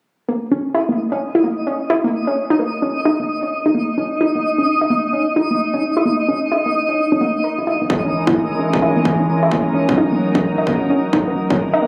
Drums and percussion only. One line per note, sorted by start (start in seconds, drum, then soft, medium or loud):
7.90 kick loud
8.27 kick loud
8.73 kick loud
9.05 kick loud
9.51 kick loud
9.89 kick loud
10.35 kick loud
10.67 kick loud
11.13 kick loud
11.50 kick loud